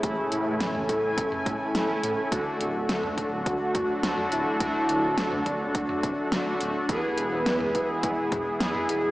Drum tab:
HH |x-x-x-x-x-x-x-x-|x-x-x-x-x-x-x-x-|x-x-x-x-x-x-x-x-|x-x-x-x-x-x-x-x-|
SD |----o-------o---|----o-------o---|----o-------o---|----o-------o---|
T2 |-----o---o------|-----o----o--o--|-----o---o------|-----o----o--o--|
BD |o-----o-o-o-----|o-----o-o-o-----|o-----o-o-o-----|o-----o-o-o-----|